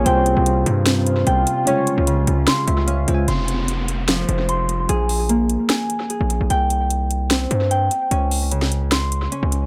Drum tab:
HH |x-x-x-x-x-x-x-x-|x-x-x-x-x-x-x-x-|x-x-x-x-x-x-x-x-|x-o-x-x-x-x-x-x-|
SD |--------o-------|--------o-------|--------o-------|--------o-------|

HH |x-x-x-x-x-x-x-x-|x-o-x-x-x-x-x-x-|
SD |--------o-------|-----o--o-------|